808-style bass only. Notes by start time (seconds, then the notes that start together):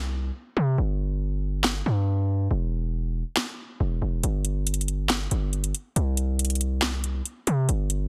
Already playing: C2
0.57 C3
0.78 G1
1.86 G2
2.51 E1
3.80 E1
4.02 E1
4.23 G1
5.31 G1
5.96 C2
7.47 C3
7.69 G1